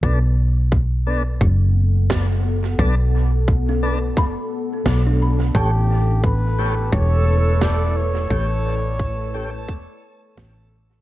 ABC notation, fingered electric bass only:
X:1
M:4/4
L:1/8
Q:"Swing 16ths" 1/4=87
K:Bm
V:1 name="Fingered electric bass" clef=bass
B,,,4 F,,,4 | B,,,4 F,,, z B,,,2 | A,,,4 E,,,4 | A,,,4 E,,, z A,,,2 |]